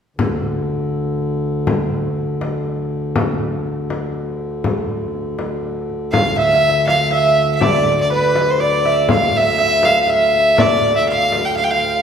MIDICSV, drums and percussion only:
0, 0, Header, 1, 2, 480
1, 0, Start_track
1, 0, Tempo, 495458
1, 173, Time_signature, 3, 2, 24, 8
1, 11645, End_track
2, 0, Start_track
2, 0, Title_t, "Frame drum"
2, 183, Note_on_c, 9, 64, 70
2, 280, Note_off_c, 9, 64, 0
2, 421, Note_on_c, 9, 64, 22
2, 518, Note_off_c, 9, 64, 0
2, 667, Note_on_c, 9, 64, 18
2, 764, Note_off_c, 9, 64, 0
2, 1143, Note_on_c, 9, 64, 18
2, 1240, Note_off_c, 9, 64, 0
2, 1618, Note_on_c, 9, 64, 63
2, 1715, Note_off_c, 9, 64, 0
2, 1861, Note_on_c, 9, 64, 20
2, 1958, Note_off_c, 9, 64, 0
2, 2105, Note_on_c, 9, 64, 20
2, 2202, Note_off_c, 9, 64, 0
2, 2338, Note_on_c, 9, 64, 48
2, 2435, Note_off_c, 9, 64, 0
2, 2583, Note_on_c, 9, 64, 17
2, 2680, Note_off_c, 9, 64, 0
2, 3057, Note_on_c, 9, 64, 67
2, 3154, Note_off_c, 9, 64, 0
2, 3548, Note_on_c, 9, 64, 19
2, 3645, Note_off_c, 9, 64, 0
2, 3781, Note_on_c, 9, 64, 48
2, 3878, Note_off_c, 9, 64, 0
2, 4025, Note_on_c, 9, 64, 15
2, 4122, Note_off_c, 9, 64, 0
2, 4497, Note_on_c, 9, 64, 57
2, 4594, Note_off_c, 9, 64, 0
2, 4991, Note_on_c, 9, 64, 20
2, 5088, Note_off_c, 9, 64, 0
2, 5218, Note_on_c, 9, 64, 46
2, 5315, Note_off_c, 9, 64, 0
2, 5460, Note_on_c, 9, 64, 17
2, 5557, Note_off_c, 9, 64, 0
2, 5712, Note_on_c, 9, 64, 21
2, 5809, Note_off_c, 9, 64, 0
2, 5944, Note_on_c, 9, 64, 74
2, 6041, Note_off_c, 9, 64, 0
2, 6662, Note_on_c, 9, 64, 48
2, 6759, Note_off_c, 9, 64, 0
2, 6898, Note_on_c, 9, 64, 18
2, 6995, Note_off_c, 9, 64, 0
2, 7136, Note_on_c, 9, 64, 23
2, 7233, Note_off_c, 9, 64, 0
2, 7376, Note_on_c, 9, 64, 69
2, 7473, Note_off_c, 9, 64, 0
2, 8095, Note_on_c, 9, 64, 57
2, 8191, Note_off_c, 9, 64, 0
2, 8333, Note_on_c, 9, 64, 20
2, 8430, Note_off_c, 9, 64, 0
2, 8573, Note_on_c, 9, 64, 22
2, 8670, Note_off_c, 9, 64, 0
2, 8802, Note_on_c, 9, 64, 79
2, 8899, Note_off_c, 9, 64, 0
2, 9523, Note_on_c, 9, 64, 60
2, 9620, Note_off_c, 9, 64, 0
2, 9772, Note_on_c, 9, 64, 21
2, 9869, Note_off_c, 9, 64, 0
2, 10014, Note_on_c, 9, 64, 26
2, 10111, Note_off_c, 9, 64, 0
2, 10251, Note_on_c, 9, 64, 81
2, 10348, Note_off_c, 9, 64, 0
2, 10489, Note_on_c, 9, 64, 25
2, 10586, Note_off_c, 9, 64, 0
2, 10969, Note_on_c, 9, 64, 55
2, 11066, Note_off_c, 9, 64, 0
2, 11448, Note_on_c, 9, 64, 22
2, 11545, Note_off_c, 9, 64, 0
2, 11645, End_track
0, 0, End_of_file